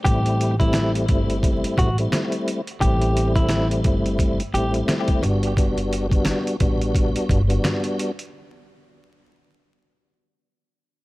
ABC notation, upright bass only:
X:1
M:4/4
L:1/8
Q:"Swing 16ths" 1/4=87
K:G
V:1 name="Upright bass" clef=bass
A,,,3 G,,,2 A,,, z2 | A,,,3 G,,,2 A,,, z G,,,- | G,,,3 A,,,2 G,,, z2 | z8 |]